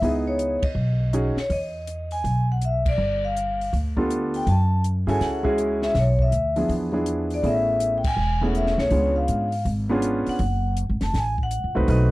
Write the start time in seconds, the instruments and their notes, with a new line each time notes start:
0.01 upright bass C#2, grand piano B3 D#4 E4 G#4, vibraphone D#5, kick, open hi-hat
0.28 vibraphone C#5
0.39 closed hi-hat
0.63 vibraphone D#5, muted upright bass stroke, kick, ride
0.75 upright bass B1
1.13 grand piano C#4 D#4 F#4 G#4, closed hi-hat
1.36 vibraphone C#5, muted upright bass stroke, snare
1.50 upright bass E2, vibraphone D#5, kick, open hi-hat
1.87 closed hi-hat
2.11 vibraphone G#5, open hi-hat
2.24 upright bass B1, kick, open hi-hat
2.52 vibraphone F#5
2.62 vibraphone E5, closed hi-hat
2.86 vibraphone D5, kick, crash
2.98 upright bass G1
3.25 vibraphone F5
3.37 closed hi-hat
3.61 open hi-hat
3.73 upright bass D2, kick, open hi-hat
3.97 grand piano B3 D4 F4 G4 A4, kick
4.11 closed hi-hat
4.34 vibraphone G5, open hi-hat
4.47 upright bass F#2, vibraphone A5, kick, open hi-hat
4.84 closed hi-hat
5.07 upright bass G2, grand piano C#4 E4 F#4 G#4 A4, vibraphone G#5, open hi-hat
5.20 upright bass C#2, vibraphone F#5, kick, snare, open hi-hat
5.43 grand piano G#3 C#4 E4 F#4 G#4, kick
5.58 closed hi-hat
5.82 vibraphone E5, snare
5.95 upright bass B1, kick, snare, open hi-hat
5.99 vibraphone C#5
6.19 vibraphone E5, kick
6.31 upright bass D2, closed hi-hat
6.56 grand piano F3 B3 D4 E4 G#4, open hi-hat
6.69 upright bass E2, kick, open hi-hat
6.92 grand piano F3 B3 D4 E4 G#4
7.06 closed hi-hat
7.30 vibraphone D5, open hi-hat
7.43 upright bass A1, grand piano A3 B3 C#4 E4 G#4, kick, open hi-hat
7.47 vibraphone E5
7.80 closed hi-hat
7.98 vibraphone G5
8.04 vibraphone G#5, kick, crash
8.16 upright bass E1
8.41 grand piano A3 B3 C#4 E4 G#4, vibraphone F#5
8.55 vibraphone E5, closed hi-hat
8.67 snare
8.78 upright bass C2, vibraphone C#5, snare
8.90 upright bass C#2, grand piano B3 C#4 D4 F4 G#4, kick, open hi-hat
9.16 vibraphone F5
9.28 upright bass G#2, closed hi-hat
9.52 open hi-hat
9.65 upright bass G#1, kick, open hi-hat
9.89 grand piano B3 C#4 D4 F4 G#4
10.02 closed hi-hat
10.27 vibraphone F#5, muted upright bass stroke, open hi-hat
10.39 upright bass F#1, kick, open hi-hat
10.77 closed hi-hat
10.89 upright bass G#1
11.01 upright bass F1, vibraphone A5, snare, open hi-hat
11.14 upright bass A1, kick, snare, open hi-hat
11.18 vibraphone G#5
11.38 kick
11.43 vibraphone F#5
11.51 closed hi-hat
11.64 upright bass C#2
11.75 upright bass C2, grand piano A3 C4 D#4 F#4 B4
11.88 upright bass B1, grand piano A3 C4 D#4 F#4 B4, vibraphone D#5, kick, open hi-hat